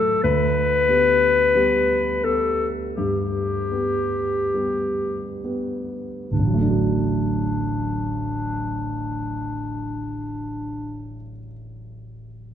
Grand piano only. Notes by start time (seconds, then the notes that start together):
Already playing: F#3 A3 A4
0.24 D2
0.89 B3 G4
1.55 G3 B3 G4
2.24 B3 G4
2.98 G2
3.72 B3 G4
4.54 G3 B3 G4
5.44 B3 G4
6.31 D1
6.39 A1
6.47 F#3
6.54 A3
6.61 D4
6.70 F#4